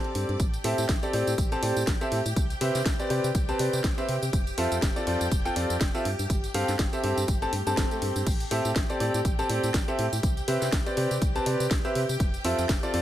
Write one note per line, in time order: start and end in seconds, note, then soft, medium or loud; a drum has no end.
0.00 0.38 C4 medium
0.00 0.38 G4 medium
0.00 0.38 A4 medium
0.00 0.41 D5 medium
0.00 0.38 A5 medium
0.00 0.41 D6 medium
0.04 closed hi-hat soft
0.15 0.25 G2 medium
0.15 open hi-hat loud
0.29 0.36 G2 medium
0.29 closed hi-hat soft
0.40 0.58 A1 loud
0.40 8.25 G4 medium
0.40 8.25 G5 medium
0.40 kick loud
0.40 closed hi-hat medium
0.40 tambourine medium
0.54 closed hi-hat soft
0.54 tambourine soft
0.64 0.74 A2 medium
0.64 0.82 C4 medium
0.64 0.82 G4 medium
0.64 0.82 A4 medium
0.64 0.82 E5 loud
0.64 open hi-hat loud
0.78 0.86 A2 medium
0.78 closed hi-hat soft
0.78 tambourine medium
0.89 0.99 A1 medium
0.89 kick loud
0.89 snare loud
0.89 closed hi-hat medium
0.89 tambourine medium
1.03 1.12 C4 medium
1.03 1.12 G4 medium
1.03 1.12 A4 medium
1.03 1.12 D5 loud
1.03 closed hi-hat soft
1.03 tambourine soft
1.13 1.23 A2 medium
1.13 1.31 C4 medium
1.13 1.31 G4 medium
1.13 1.31 A4 medium
1.13 1.31 D5 medium
1.13 open hi-hat loud
1.27 1.35 A2 medium
1.27 closed hi-hat soft
1.27 tambourine medium
1.38 1.56 A1 medium
1.38 kick loud
1.38 closed hi-hat medium
1.38 tambourine medium
1.52 1.60 C4 loud
1.52 1.60 G4 medium
1.52 1.60 A4 medium
1.52 1.60 A5 loud
1.52 closed hi-hat soft
1.52 tambourine soft
1.63 1.72 A2 medium
1.63 1.81 C4 medium
1.63 1.81 G4 medium
1.63 1.81 A4 medium
1.63 1.81 D5 medium
1.63 open hi-hat loud
1.76 1.84 A2 medium
1.76 closed hi-hat soft
1.76 tambourine medium
1.87 1.97 A1 loud
1.87 kick loud
1.87 snare loud
1.87 closed hi-hat medium
1.87 tambourine medium
2.01 2.17 C4 loud
2.01 2.17 G4 medium
2.01 2.17 A4 medium
2.01 2.17 E5 loud
2.01 closed hi-hat soft
2.01 tambourine soft
2.12 2.22 A2 medium
2.12 open hi-hat loud
2.26 2.33 A2 medium
2.26 closed hi-hat soft
2.26 tambourine medium
2.36 2.55 C2 loud
2.36 kick loud
2.36 closed hi-hat medium
2.36 tambourine medium
2.50 closed hi-hat soft
2.50 tambourine soft
2.61 2.71 C3 medium
2.61 2.79 C4 loud
2.61 2.79 G4 medium
2.61 2.79 B4 medium
2.61 2.79 E5 loud
2.61 open hi-hat loud
2.75 2.82 C3 medium
2.75 snare soft
2.75 closed hi-hat soft
2.75 tambourine medium
2.86 2.95 C2 medium
2.86 kick loud
2.86 snare loud
2.86 closed hi-hat medium
2.86 tambourine medium
3.00 3.09 C4 medium
3.00 3.09 G4 medium
3.00 3.09 B4 medium
3.00 3.09 D5 loud
3.00 closed hi-hat soft
3.00 tambourine soft
3.10 3.20 C3 medium
3.10 3.28 C4 medium
3.10 3.28 G4 medium
3.10 3.28 B4 medium
3.10 3.28 D5 loud
3.10 open hi-hat loud
3.24 3.32 C3 medium
3.24 closed hi-hat soft
3.24 tambourine medium
3.35 3.53 C2 medium
3.35 kick loud
3.35 closed hi-hat loud
3.35 tambourine medium
3.49 3.57 C4 loud
3.49 3.57 G4 medium
3.49 3.57 B4 medium
3.49 3.57 A5 loud
3.49 closed hi-hat soft
3.49 tambourine soft
3.59 3.69 C3 medium
3.59 3.77 C4 medium
3.59 3.77 G4 medium
3.59 3.77 B4 medium
3.59 3.77 D5 medium
3.59 open hi-hat loud
3.73 3.81 C3 medium
3.73 closed hi-hat soft
3.73 tambourine medium
3.84 3.94 C2 loud
3.84 kick loud
3.84 snare loud
3.84 closed hi-hat medium
3.84 tambourine medium
3.98 4.14 C4 loud
3.98 4.14 G4 medium
3.98 4.14 B4 medium
3.98 4.14 E5 loud
3.98 closed hi-hat soft
3.98 tambourine soft
4.09 4.18 C3 medium
4.09 open hi-hat loud
4.22 4.30 C3 medium
4.22 closed hi-hat soft
4.22 tambourine medium
4.33 4.51 F1 loud
4.33 kick loud
4.33 closed hi-hat loud
4.33 tambourine medium
4.47 closed hi-hat soft
4.47 tambourine soft
4.58 4.67 F2 medium
4.58 4.76 C4 loud
4.58 4.76 F4 medium
4.58 4.76 A4 loud
4.58 4.76 E5 loud
4.58 open hi-hat loud
4.72 4.79 F2 medium
4.72 closed hi-hat soft
4.72 tambourine medium
4.82 4.92 F1 medium
4.82 kick loud
4.82 snare loud
4.82 closed hi-hat medium
4.82 tambourine medium
4.96 5.05 C4 medium
4.96 5.05 F4 medium
4.96 5.05 A4 medium
4.96 5.05 D5 loud
4.96 closed hi-hat soft
4.96 tambourine soft
5.07 5.17 F2 medium
5.07 5.25 C4 medium
5.07 5.25 F4 medium
5.07 5.25 A4 medium
5.07 5.25 D5 loud
5.07 open hi-hat loud
5.21 5.28 F2 medium
5.21 closed hi-hat soft
5.21 tambourine medium
5.31 5.50 F1 medium
5.31 kick loud
5.31 closed hi-hat loud
5.31 tambourine medium
5.45 5.54 C4 loud
5.45 5.54 F4 medium
5.45 5.54 A4 medium
5.45 5.54 G5 loud
5.45 closed hi-hat soft
5.45 tambourine soft
5.56 5.66 F2 medium
5.56 5.74 C4 medium
5.56 5.74 F4 medium
5.56 5.74 A4 medium
5.56 5.74 D5 medium
5.56 open hi-hat loud
5.70 5.77 F2 medium
5.70 closed hi-hat soft
5.70 tambourine medium
5.81 5.90 F1 loud
5.81 kick loud
5.81 snare loud
5.81 closed hi-hat loud
5.81 tambourine medium
5.95 6.04 C4 loud
5.95 6.04 F4 medium
5.95 6.04 A4 medium
5.95 6.04 E5 loud
5.95 closed hi-hat soft
5.95 tambourine soft
6.05 6.15 G2 medium
6.05 open hi-hat loud
6.19 6.27 G2 medium
6.19 closed hi-hat soft
6.19 tambourine medium
6.30 6.48 G1 loud
6.30 kick loud
6.30 closed hi-hat loud
6.30 tambourine medium
6.44 closed hi-hat soft
6.44 tambourine soft
6.54 6.64 G2 medium
6.54 6.72 C4 loud
6.54 6.72 G4 medium
6.54 6.72 A4 medium
6.54 6.72 F5 loud
6.54 open hi-hat loud
6.68 6.76 G2 medium
6.68 snare soft
6.68 closed hi-hat soft
6.68 tambourine medium
6.79 6.89 G1 medium
6.79 kick loud
6.79 snare loud
6.79 closed hi-hat loud
6.79 tambourine medium
6.93 7.02 C4 medium
6.93 7.02 G4 medium
6.93 7.02 A4 medium
6.93 7.02 E5 loud
6.93 closed hi-hat soft
6.93 tambourine soft
7.04 7.13 G2 loud
7.04 7.22 C4 medium
7.04 7.22 G4 medium
7.04 7.22 A4 medium
7.04 7.22 E5 medium
7.04 open hi-hat loud
7.17 7.25 G2 medium
7.17 closed hi-hat soft
7.17 tambourine medium
7.28 7.46 G1 medium
7.28 kick loud
7.28 closed hi-hat loud
7.28 tambourine medium
7.28 swell medium
7.42 7.50 C4 loud
7.42 7.50 G4 loud
7.42 7.50 A4 loud
7.42 7.50 A5 loud
7.42 closed hi-hat soft
7.42 tambourine soft
7.53 7.62 G2 medium
7.53 open hi-hat loud
7.67 7.74 G2 medium
7.67 8.25 C4 medium
7.67 8.25 G4 medium
7.67 8.25 A4 medium
7.67 8.25 A5 medium
7.67 closed hi-hat soft
7.67 tambourine medium
7.77 7.87 G1 loud
7.77 kick loud
7.77 snare loud
7.77 closed hi-hat loud
7.77 tambourine medium
7.91 closed hi-hat soft
7.91 tambourine soft
8.02 8.12 G2 medium
8.02 open hi-hat loud
8.16 8.23 G2 medium
8.16 closed hi-hat soft
8.16 tambourine medium
8.27 8.45 A1 loud
8.27 13.02 G4 medium
8.27 13.02 G5 medium
8.27 kick loud
8.27 closed hi-hat medium
8.27 crash medium
8.27 tambourine medium
8.40 closed hi-hat soft
8.40 tambourine soft
8.51 8.61 A2 medium
8.51 8.69 C4 loud
8.51 8.69 G4 medium
8.51 8.69 A4 medium
8.51 8.69 E5 loud
8.51 open hi-hat loud
8.65 8.73 A2 medium
8.65 closed hi-hat soft
8.65 tambourine medium
8.76 8.85 A1 medium
8.76 kick loud
8.76 snare loud
8.76 closed hi-hat medium
8.76 tambourine medium
8.90 8.99 C4 medium
8.90 8.99 G4 medium
8.90 8.99 A4 medium
8.90 8.99 D5 loud
8.90 closed hi-hat soft
8.90 tambourine soft
9.00 9.10 A2 medium
9.00 9.18 C4 medium
9.00 9.18 G4 medium
9.00 9.18 A4 medium
9.00 9.18 D5 medium
9.00 open hi-hat loud
9.14 9.22 A2 medium
9.14 closed hi-hat soft
9.14 tambourine medium
9.25 9.43 A1 medium
9.25 kick loud
9.25 closed hi-hat loud
9.25 tambourine medium
9.39 9.47 C4 loud
9.39 9.47 G4 medium
9.39 9.47 A4 medium
9.39 9.47 A5 loud
9.39 closed hi-hat soft
9.39 tambourine soft
9.49 9.59 A2 medium
9.49 9.67 C4 medium
9.49 9.67 G4 medium
9.49 9.67 A4 medium
9.49 9.67 D5 medium
9.49 open hi-hat loud
9.63 9.71 A2 medium
9.63 closed hi-hat soft
9.63 tambourine medium
9.74 9.84 A1 loud
9.74 kick loud
9.74 snare loud
9.74 closed hi-hat loud
9.74 tambourine medium
9.88 10.04 C4 loud
9.88 10.04 G4 medium
9.88 10.04 A4 medium
9.88 10.04 E5 loud
9.88 closed hi-hat soft
9.88 tambourine soft
9.99 10.08 A2 medium
9.99 open hi-hat loud
10.13 10.20 A2 medium
10.13 closed hi-hat soft
10.13 tambourine medium
10.23 10.41 C2 loud
10.23 kick loud
10.23 closed hi-hat loud
10.23 tambourine medium
10.37 closed hi-hat soft
10.37 tambourine soft
10.48 10.58 C3 medium
10.48 10.66 C4 loud
10.48 10.66 G4 medium
10.48 10.66 B4 medium
10.48 10.66 E5 loud
10.48 open hi-hat loud
10.62 10.69 C3 medium
10.62 snare soft
10.62 closed hi-hat soft
10.62 tambourine medium
10.72 10.82 C2 loud
10.72 kick loud
10.72 snare loud
10.72 closed hi-hat medium
10.72 tambourine medium
10.86 10.96 C4 medium
10.86 10.96 G4 medium
10.86 10.96 B4 medium
10.86 10.96 D5 loud
10.86 closed hi-hat soft
10.86 tambourine soft
10.97 11.07 C3 medium
10.97 11.15 C4 medium
10.97 11.15 G4 medium
10.97 11.15 B4 medium
10.97 11.15 D5 medium
10.97 open hi-hat loud
11.11 11.18 C3 medium
11.11 closed hi-hat soft
11.11 tambourine medium
11.22 11.40 C2 medium
11.22 kick loud
11.22 closed hi-hat loud
11.22 tambourine medium
11.36 11.44 C4 loud
11.36 11.44 G4 medium
11.36 11.44 B4 medium
11.36 11.44 A5 loud
11.36 closed hi-hat soft
11.36 tambourine soft
11.46 11.56 C3 medium
11.46 11.64 C4 medium
11.46 11.64 G4 medium
11.46 11.64 B4 medium
11.46 11.64 D5 medium
11.46 open hi-hat loud
11.60 11.68 C3 medium
11.60 closed hi-hat soft
11.60 tambourine medium
11.71 11.81 C2 loud
11.71 kick loud
11.71 snare loud
11.71 closed hi-hat medium
11.71 tambourine medium
11.85 12.01 C4 loud
11.85 12.01 G4 medium
11.85 12.01 B4 medium
11.85 12.01 E5 loud
11.85 closed hi-hat soft
11.85 tambourine soft
11.95 12.05 C3 medium
11.95 open hi-hat loud
12.09 12.17 C3 medium
12.09 closed hi-hat soft
12.09 tambourine medium
12.20 12.38 F1 loud
12.20 kick loud
12.20 closed hi-hat medium
12.20 tambourine medium
12.34 closed hi-hat soft
12.34 tambourine soft
12.45 12.54 F2 medium
12.45 12.63 C4 loud
12.45 12.63 F4 medium
12.45 12.63 A4 medium
12.45 12.63 E5 loud
12.45 open hi-hat loud
12.58 12.66 F2 medium
12.58 closed hi-hat soft
12.58 tambourine medium
12.69 12.79 F1 medium
12.69 kick loud
12.69 snare loud
12.69 closed hi-hat medium
12.69 tambourine medium
12.83 12.92 C4 medium
12.83 12.92 F4 medium
12.83 12.92 A4 medium
12.83 12.92 D5 loud
12.83 closed hi-hat soft
12.83 tambourine soft
12.94 13.02 F2 medium
12.94 13.02 C4 medium
12.94 13.02 F4 medium
12.94 13.02 A4 medium
12.94 13.02 D5 loud
12.94 open hi-hat loud